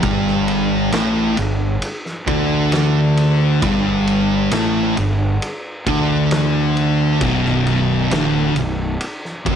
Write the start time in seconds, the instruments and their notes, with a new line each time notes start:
0.03 fingered electric bass G1, distorted electric guitar G2 G3, kick, ride
0.27 snare
0.48 ride
0.92 fingered electric bass A1, distorted electric guitar A2 A3, snare, ride
1.37 fingered electric bass G1, distorted electric guitar G2, ride
1.82 ride
2.06 snare
2.27 fingered electric bass D2, distorted electric guitar D3 D4, kick, ride
2.72 snare, ride
3.17 ride
3.62 fingered electric bass G1, distorted electric guitar G2 G3, kick, ride
4.07 ride
4.51 fingered electric bass A1, distorted electric guitar A2 A3, snare, ride
4.97 fingered electric bass G1, distorted electric guitar G2, ride
5.42 ride
5.87 fingered electric bass D2, distorted electric guitar D3 D4, kick, ride
6.31 snare, ride
6.77 ride
7.21 fingered electric bass B0, distorted electric guitar B1 B2, kick, ride
7.45 snare
7.67 ride
8.11 fingered electric bass D1, distorted electric guitar D2 D3, snare, ride
8.54 fingered electric bass B0, distorted electric guitar B1, ride
9.01 ride
9.25 snare
9.46 fingered electric bass F#1, distorted electric guitar F#2 F#3, kick, ride